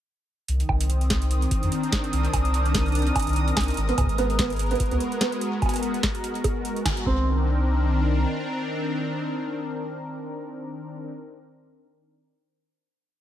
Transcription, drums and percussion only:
0.48 closed hi-hat
0.60 closed hi-hat
0.69 kick, high bongo
0.81 closed hi-hat
0.90 closed hi-hat
1.01 closed hi-hat
1.10 kick, snare, closed hi-hat
1.22 closed hi-hat
1.31 closed hi-hat
1.42 closed hi-hat
1.51 kick, closed hi-hat
1.63 closed hi-hat
1.72 closed hi-hat
1.83 closed hi-hat
1.92 kick, snare, closed hi-hat
2.04 closed hi-hat
2.13 closed hi-hat
2.25 closed hi-hat
2.33 kick, closed hi-hat, high bongo
2.45 closed hi-hat
2.54 closed hi-hat
2.66 closed hi-hat
2.74 kick, snare, closed hi-hat
2.86 closed hi-hat
2.88 closed hi-hat
2.92 closed hi-hat
2.95 closed hi-hat
2.99 closed hi-hat
3.02 closed hi-hat
3.07 closed hi-hat
3.16 kick, closed hi-hat, high bongo
3.19 closed hi-hat
3.22 closed hi-hat
3.27 closed hi-hat
3.29 closed hi-hat
3.33 closed hi-hat
3.36 closed hi-hat
3.48 closed hi-hat
3.57 kick, snare, closed hi-hat, high bongo
3.60 closed hi-hat
3.64 closed hi-hat
3.68 closed hi-hat
3.70 closed hi-hat
3.74 closed hi-hat
3.77 closed hi-hat
3.89 closed hi-hat
3.98 kick, closed hi-hat, high bongo
4.01 kick
4.04 kick
4.06 kick, closed hi-hat
4.18 closed hi-hat
4.30 closed hi-hat
4.39 kick, snare, closed hi-hat
4.50 closed hi-hat
4.52 closed hi-hat
4.56 closed hi-hat
4.59 closed hi-hat
4.63 closed hi-hat
4.66 closed hi-hat
4.71 closed hi-hat
4.75 closed hi-hat
4.80 kick, closed hi-hat
4.86 closed hi-hat
4.91 closed hi-hat
5.00 closed hi-hat
5.12 closed hi-hat
5.21 snare, closed hi-hat
5.32 closed hi-hat
5.41 closed hi-hat
5.62 kick, closed hi-hat, high bongo
5.66 closed hi-hat, high bongo
5.69 high bongo
5.74 closed hi-hat, high bongo
5.76 closed hi-hat, high bongo
5.80 closed hi-hat, high bongo
5.94 closed hi-hat
6.03 kick, snare, closed hi-hat
6.15 closed hi-hat
6.24 closed hi-hat
6.35 closed hi-hat
6.44 kick, closed hi-hat, high bongo
6.65 closed hi-hat
6.76 closed hi-hat
6.85 kick, snare, closed hi-hat, high bongo
6.97 closed hi-hat
7.06 kick

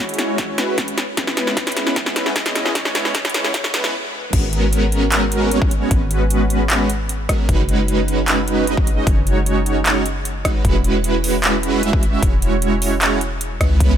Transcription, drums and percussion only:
0.09 closed hi-hat
0.14 closed hi-hat
0.19 snare, closed hi-hat
0.38 kick, snare, closed hi-hat
0.58 snare, closed hi-hat
0.78 kick, snare, closed hi-hat
0.88 closed hi-hat
0.98 snare, closed hi-hat
1.17 kick, snare, closed hi-hat
1.27 snare
1.37 snare, closed hi-hat
1.47 snare
1.57 kick, snare, closed hi-hat
1.67 snare, closed hi-hat
1.72 closed hi-hat
1.77 snare, closed hi-hat
1.87 snare
1.96 kick, snare, closed hi-hat
2.06 snare
2.16 snare, closed hi-hat
2.26 snare
2.36 kick, snare, closed hi-hat
2.46 snare, closed hi-hat
2.55 snare, closed hi-hat
2.66 snare
2.75 kick, snare, closed hi-hat
2.85 snare
2.95 snare, closed hi-hat
3.05 snare
3.15 kick, snare, closed hi-hat
3.25 snare, closed hi-hat
3.30 closed hi-hat
3.34 snare, closed hi-hat
3.44 snare
3.54 kick, snare, closed hi-hat
3.64 snare
3.74 snare, closed hi-hat
3.84 snare
4.33 kick, closed hi-hat, crash
4.53 closed hi-hat
4.73 closed hi-hat
4.92 closed hi-hat
5.12 clap, closed hi-hat
5.32 closed hi-hat
5.51 closed hi-hat
5.62 kick
5.71 closed hi-hat
5.91 kick, closed hi-hat
6.11 closed hi-hat
6.30 closed hi-hat
6.50 closed hi-hat
6.70 clap, closed hi-hat
6.90 closed hi-hat
7.09 closed hi-hat
7.29 kick, cross-stick, closed hi-hat
7.49 kick, closed hi-hat
7.69 closed hi-hat
7.88 closed hi-hat
8.08 closed hi-hat
8.28 clap, closed hi-hat
8.48 closed hi-hat
8.67 closed hi-hat
8.77 kick
8.87 closed hi-hat
9.07 kick, closed hi-hat
9.27 closed hi-hat
9.46 closed hi-hat
9.66 closed hi-hat
9.86 clap, closed hi-hat
10.06 closed hi-hat
10.25 closed hi-hat
10.45 kick, cross-stick, closed hi-hat
10.65 kick, closed hi-hat
10.84 closed hi-hat
11.04 closed hi-hat
11.24 open hi-hat
11.44 clap, closed hi-hat
11.63 closed hi-hat
11.83 closed hi-hat
11.93 kick
12.03 closed hi-hat
12.23 kick, closed hi-hat
12.42 closed hi-hat
12.62 closed hi-hat
12.82 open hi-hat
13.02 clap, closed hi-hat
13.21 closed hi-hat
13.41 closed hi-hat
13.61 kick, cross-stick, closed hi-hat
13.80 kick, closed hi-hat

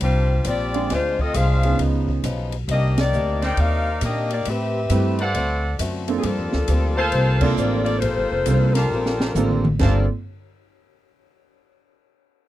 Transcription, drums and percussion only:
0.01 kick, ride
0.45 kick, hi-hat pedal, ride
0.74 ride
0.90 kick, snare, ride
1.19 kick
1.34 hi-hat pedal, ride
1.63 ride
1.79 kick, ride
2.08 kick
2.24 kick, hi-hat pedal, ride
2.52 ride
2.68 kick, ride
2.98 snare, ride
3.13 hi-hat pedal
3.42 snare, ride
3.57 kick, ride
4.01 kick, hi-hat pedal, ride
4.30 ride
4.45 kick, ride
4.90 kick, hi-hat pedal, ride
5.19 ride
5.35 kick, ride
5.79 kick, hi-hat pedal, ride
6.08 ride
6.23 kick, ride
6.52 snare
6.68 kick, hi-hat pedal, ride
7.12 kick, ride
7.41 kick, crash
7.57 hi-hat pedal
7.86 ride
8.02 kick, ride
8.46 kick, hi-hat pedal, ride
8.75 snare, ride
9.06 snare
9.20 snare
9.35 hi-hat pedal, mid tom
9.51 mid tom
9.65 mid tom
9.79 kick, snare, crash

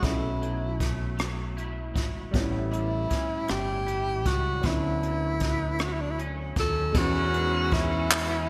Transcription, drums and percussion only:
0.03 kick, closed hi-hat
0.43 closed hi-hat
0.80 kick, closed hi-hat
1.19 cross-stick, closed hi-hat
1.58 closed hi-hat
1.96 kick, closed hi-hat
2.34 kick, closed hi-hat
2.73 closed hi-hat
3.10 kick, closed hi-hat
3.48 cross-stick, closed hi-hat
3.88 closed hi-hat
4.25 kick, closed hi-hat
4.63 kick, closed hi-hat
5.03 closed hi-hat
5.40 kick, closed hi-hat
5.79 cross-stick, closed hi-hat
6.19 closed hi-hat
6.56 kick, closed hi-hat
6.94 kick, crash
7.34 closed hi-hat
7.71 kick, closed hi-hat
8.11 clap

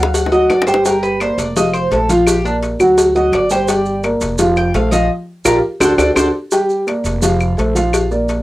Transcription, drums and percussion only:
0.03 high bongo
0.14 cowbell, maracas
0.26 low bongo
0.32 maracas
0.50 cowbell, low bongo, claves, maracas
0.62 low bongo
0.68 cowbell, maracas
0.74 low bongo
0.85 cowbell, maracas
1.04 maracas
1.20 cowbell, claves, maracas
1.39 cowbell, maracas
1.57 cowbell, maracas
1.74 claves, maracas
1.92 cowbell, maracas
2.09 cowbell, maracas
2.27 cowbell, claves, maracas
2.46 maracas
2.63 cowbell, maracas
2.80 claves, maracas
2.98 cowbell, maracas
3.15 maracas
3.33 cowbell, claves, maracas
3.50 cowbell, maracas
3.68 cowbell, maracas
3.86 maracas
4.03 cowbell, claves, maracas
4.21 cowbell, maracas
4.38 cowbell, maracas
4.56 claves, maracas
4.74 cowbell, maracas
4.92 cowbell, maracas
5.45 cowbell, claves, maracas
5.81 cowbell, claves, maracas
5.98 cowbell, claves, maracas
6.16 cowbell, claves, maracas
6.51 cowbell, maracas
6.70 maracas
6.87 cowbell, claves, maracas
7.05 cowbell, maracas
7.22 cowbell, maracas
7.40 claves, maracas
7.58 cowbell, maracas
7.76 cowbell, maracas
7.93 cowbell, claves, maracas
8.11 maracas
8.29 cowbell, maracas

